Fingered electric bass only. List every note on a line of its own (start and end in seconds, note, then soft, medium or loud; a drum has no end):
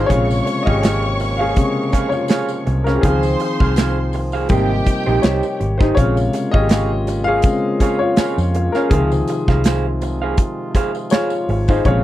0.10 0.40 A#1 loud
0.67 1.53 G#1 medium
2.67 2.97 C2 medium
3.03 3.34 C#2 medium
3.61 4.47 C2 medium
4.50 4.80 G#1 loud
4.87 muted fingered electric bass stroke soft
5.07 5.21 A#1 medium
5.24 5.40 C2 medium
5.60 5.91 G#1 medium
5.97 6.28 A#1 loud
6.54 7.40 G#1 medium
8.18 muted fingered electric bass stroke soft
8.38 8.68 F2 medium
8.91 9.21 C#2 medium
9.48 10.34 C2 medium
11.49 11.79 G#1 medium
11.85 12.04 A#1 loud